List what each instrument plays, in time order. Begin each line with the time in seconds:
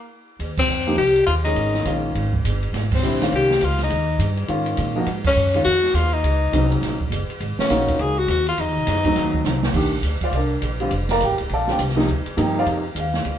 Already playing: tenor saxophone A#3
0.39 upright bass D#2, ride
0.57 tenor saxophone C4, kick, crash
0.68 upright bass F2, hi-hat pedal
0.87 grand piano F3 A#3 D#4 G4
0.97 upright bass C2, tenor saxophone G4, ride
1.16 ride
1.26 upright bass D#2, tenor saxophone F4, hi-hat pedal, ride
1.44 grand piano D#3 G#3 C#4 G#4, tenor saxophone D#4, ride
1.55 upright bass G#1, ride
1.74 snare
1.85 upright bass A#1, grand piano D#3 G#3 C#4 F4, hi-hat pedal, ride
2.15 upright bass G#1, ride
2.33 kick
2.44 upright bass G1, hi-hat pedal, ride
2.63 ride
2.73 upright bass G#1, snare, ride
2.92 tenor saxophone C4, kick, crash
3.02 upright bass A#1, grand piano D3 G3 C4 E4, hi-hat pedal
3.21 grand piano D#3 G#3 C#4 F4, snare, ride
3.32 upright bass C2, tenor saxophone G4, ride
3.50 snare
3.61 upright bass C#2, tenor saxophone F4, hi-hat pedal, ride
3.79 snare, ride
3.84 tenor saxophone D#4
3.90 upright bass D#2, ride
4.19 upright bass G2, hi-hat pedal, ride
4.37 ride
4.48 upright bass G#2, grand piano D#3 G#3 C#4 F4, ride
4.66 ride
4.77 upright bass A#2, hi-hat pedal, ride
4.96 grand piano F3 A#3 D#4 F#4
5.06 upright bass G#2, ride
5.24 tenor saxophone C#4, kick, crash
5.36 upright bass F#2, hi-hat pedal
5.54 grand piano D#3 G#3 C#4 F4, ride
5.64 upright bass F2, tenor saxophone F#4, ride
5.84 snare
5.94 upright bass D#2, tenor saxophone F4, hi-hat pedal, ride
6.14 tenor saxophone D#4
6.23 upright bass C#2, ride
6.52 upright bass C2, grand piano C#3 F#3 C4 D#4, hi-hat pedal, ride
6.72 ride
6.81 upright bass A#1, snare, ride
7.00 kick
7.10 upright bass F#1, hi-hat pedal, ride
7.29 muted upright bass stroke, ride
7.40 upright bass G#1, ride
7.58 tenor saxophone C#4, muted upright bass stroke, snare
7.70 upright bass A#1, grand piano A#3 D#4 F4 F#4, snare, hi-hat pedal, ride
7.88 kick, ride
7.99 upright bass C#2, tenor saxophone G#4, ride
8.19 tenor saxophone F#4
8.28 upright bass D#2, tenor saxophone F#4, hi-hat pedal, ride
8.47 tenor saxophone F4, ride
8.58 upright bass F2, tenor saxophone D#4, ride
8.67 upright bass D#2
8.77 upright bass C2
8.87 upright bass F#2, snare, hi-hat pedal, ride
9.05 grand piano F#3 A3 C4 D#4, kick, ride
9.16 upright bass D#2, snare, ride
9.34 kick
9.45 upright bass C2, grand piano F#3 A3 C4 D#4, snare, hi-hat pedal
9.63 snare
9.74 upright bass A#1, grand piano D#3 A3 D4 G4, kick, crash
10.02 upright bass D2, hi-hat pedal, ride
10.21 grand piano F4 C5 D5 F5, muted upright bass stroke, kick, ride
10.31 upright bass C2, grand piano D5, ride
10.36 grand piano D4 A4 A#4
10.62 upright bass A#1, hi-hat pedal, ride
10.80 grand piano D3 G3 C4 F4, ride
10.91 upright bass F1, ride
11.09 grand piano A#4 D5 F5 A#5, snare, ride
11.20 upright bass A1, grand piano G4 G5, hi-hat pedal, ride
11.30 upright bass F1
11.38 upright bass D1, ride
11.49 upright bass A#1, grand piano D5 F5 A5, ride
11.54 grand piano A4
11.67 grand piano D3 G3 C4 F4 G4 G5, snare
11.79 upright bass C2, hi-hat pedal, ride
11.89 snare
11.96 grand piano C3 F3 A#3 D#4, snare
12.08 upright bass D2, ride
12.26 muted upright bass stroke, ride
12.37 upright bass G2, grand piano C3 F3 A#3 D#4, hi-hat pedal, ride
12.41 grand piano G4 G5
12.59 grand piano F4 C5 D5 F5
12.66 upright bass F2, ride
12.95 upright bass D#2, hi-hat pedal, ride
13.00 grand piano F5
13.14 snare
13.25 upright bass D2, ride